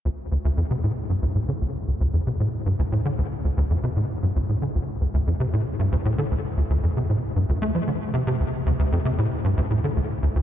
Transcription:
X:1
M:4/4
L:1/16
Q:1/4=115
K:Dm
V:1 name="Analog synth bass" clef=bass
D,, z D,, D,, F,, C, A,, z G,, D,, A,, D, D,, z D,, D,, | F,, C, A,, z G,, D,, A,, D, D,, z D,, D,, F,, C, A,, z | G,, D,, A,, D, D,, z D,, D,, F,, C, A,, z G,, D,, A,, D, | D,, z D,, D,, F,, C, A,, z G,, D,, A, F, D, z C, C, |
D,, z D,, D,, F,, C, A,, z G,, D,, A,, D, D,, z D,, D,, |]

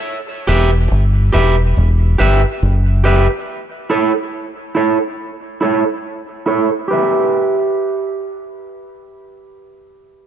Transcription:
X:1
M:4/4
L:1/16
Q:"Swing 16ths" 1/4=70
K:Edor
V:1 name="Clean electric guitar"
z2 [GBe]2 z2 [GBe]2 z2 [GBe]2 z2 [GBe]2 | z2 [EAc]2 z2 [EAc]2 z2 [EAc]2 z2 [EAc]2 | [GBe]16 |]
V:2 name="Fingered electric bass" clef=bass
z2 E,,,2 G,,,2 E,,,2 E,,,2 G,,, z F,,,3 z | z16 | z16 |]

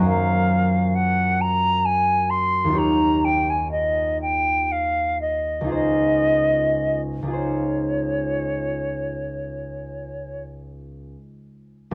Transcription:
X:1
M:12/8
L:1/16
Q:3/8=39
K:Db
V:1 name="Flute"
f4 g2 b2 a2 c'2 b2 =g a e2 g2 f2 e2 | e4- e z d12 z6 |]
V:2 name="Harp"
[G,,DFGBc]12 [E,,EF=Gd]12 | [D,,EFAc]6 [D,,EFAc]16- [D,,EFAc]2 |]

